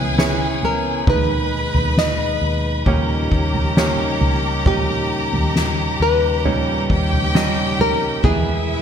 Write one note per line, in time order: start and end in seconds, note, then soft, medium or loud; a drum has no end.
0.00 1.03 C#2 loud
0.00 1.04 C#3 medium
0.00 0.13 B3 medium
0.00 1.05 B3 medium
0.00 0.13 C#4 medium
0.00 0.13 E4 medium
0.00 1.04 E4 medium
0.00 0.13 G#4 medium
0.00 1.04 G#4 medium
0.00 0.14 B4 medium
0.00 0.60 B4 medium
0.00 1.04 G#5 medium
0.18 1.03 B3 medium
0.18 1.03 C#4 medium
0.18 1.03 E4 medium
0.18 1.03 G#4 medium
0.18 1.03 C#5 loud
0.18 snare loud
0.63 1.09 A#4 medium
0.63 floor tom medium
1.07 1.70 D#2 loud
1.07 2.85 B2 medium
1.07 2.38 D#3 medium
1.07 2.85 G#3 medium
1.07 8.20 D#4 medium
1.07 2.78 D#4 medium
1.07 2.78 G#4 medium
1.07 2.83 B4 medium
1.07 2.78 B4 medium
1.07 1.98 B4 medium
1.07 2.83 B5 medium
1.07 kick loud
1.07 floor tom loud
1.74 2.38 D#2 medium
1.74 floor tom medium
1.97 3.28 D#5 loud
1.97 snare loud
2.41 2.83 D#2 medium
2.86 3.28 D#2 medium
2.86 4.17 A#2 medium
2.86 8.20 C#3 medium
2.86 8.19 G3 medium
2.86 3.72 A#3 medium
2.86 3.72 C#4 medium
2.86 3.72 D#4 medium
2.86 6.86 G4 medium
2.86 3.72 G4 medium
2.86 3.72 C#5 medium
2.86 6.86 A#5 medium
2.86 kick medium
2.86 floor tom medium
3.32 4.17 D#2 medium
3.32 kick medium
3.54 floor tom medium
3.77 4.62 A#3 medium
3.77 4.62 C#4 medium
3.77 4.62 D#4 medium
3.77 4.62 G4 medium
3.77 4.62 C#5 medium
3.77 snare loud
4.21 4.66 C#2 medium
4.21 floor tom medium
4.66 5.29 D#2 loud
4.66 6.36 A#2 medium
4.66 6.36 C#4 medium
4.66 6.36 D#4 medium
4.66 6.36 G4 medium
4.66 5.52 G4 loud
4.66 6.36 D#5 medium
4.66 kick loud
4.66 floor tom loud
5.33 5.96 D#2 medium
5.33 floor tom medium
5.56 snare loud
6.00 6.85 D#2 medium
6.00 7.81 B4 medium
6.45 7.75 A#2 medium
6.45 7.30 G3 medium
6.45 7.30 C#4 medium
6.45 7.30 D#4 medium
6.45 7.30 G4 medium
6.45 7.30 C#5 medium
6.45 floor tom medium
6.89 8.20 D#2 loud
6.89 8.21 G4 medium
6.89 8.21 G5 loud
6.89 kick medium
7.13 floor tom medium
7.34 8.20 G3 medium
7.34 8.20 C#4 medium
7.34 8.19 D#4 medium
7.34 8.20 G4 medium
7.34 8.20 D#5 medium
7.34 snare loud
7.79 8.24 A#4 medium
7.79 floor tom medium
8.23 8.82 E2 loud
8.23 8.82 B2 medium
8.23 8.82 G#3 medium
8.23 8.82 B3 medium
8.23 8.82 E4 medium
8.23 8.82 G#4 medium
8.23 8.82 E5 medium
8.23 kick loud
8.23 floor tom loud